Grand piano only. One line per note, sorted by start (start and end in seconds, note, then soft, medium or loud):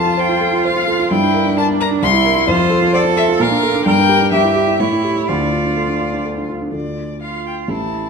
0.00 1.07 F2 medium
0.00 0.06 F4 soft
0.00 0.14 A4 medium
0.06 0.25 F4 medium
0.18 0.37 C5 medium
0.29 0.48 F4 medium
0.41 0.60 A4 medium
0.53 0.72 F4 medium
0.65 0.83 C5 medium
0.76 0.95 F4 medium
0.88 1.06 A4 medium
0.99 1.11 F4 medium
1.11 2.00 G2 medium
1.23 1.41 D4 soft
1.34 1.52 A#4 medium
1.45 1.64 D4 medium
1.57 1.75 A#4 medium
1.69 1.87 D4 medium
1.80 1.98 A#4 medium
1.91 2.03 D4 medium
2.02 2.47 C2 medium
2.14 2.32 E4 medium
2.25 2.43 A#4 medium
2.36 2.48 E4 medium
2.47 3.37 F2 medium
2.59 2.78 F4 medium
2.70 2.89 A4 medium
2.82 3.01 F4 medium
2.93 3.12 C5 medium
3.05 3.24 F4 medium
3.17 3.35 A4 medium
3.29 3.40 F4 medium
3.40 3.84 A#2 medium
3.51 3.70 D4 medium
3.63 3.82 A4 medium
3.74 3.86 D4 medium
3.86 4.30 G2 medium
3.98 4.16 D4 medium
4.09 4.28 G4 medium
4.21 4.32 D4 medium
4.32 4.78 G2 medium
4.44 4.63 E4 medium
4.56 4.75 G4 medium
4.67 4.79 E4 medium
4.80 5.26 A2 medium
4.93 5.11 E4 soft
5.04 5.23 G4 medium
5.16 5.28 E4 soft
5.29 6.70 D2 medium
5.41 5.60 D4 soft
5.53 5.72 F4 soft
5.65 5.84 D4 soft
5.77 5.96 A4 soft
5.88 6.08 D4 soft
6.01 6.20 F4 soft
6.13 6.32 D4 soft
6.25 6.45 A4 soft
6.37 6.57 D4 soft
6.49 6.69 F4 soft
6.61 6.71 D4 soft
6.72 7.65 D2 soft
6.72 7.65 A3 soft
6.72 7.66 D4 soft
6.72 7.66 F4 soft
7.68 8.10 A1 soft
7.68 8.10 A3 soft
7.68 8.10 C#4 soft
7.68 8.10 G4 soft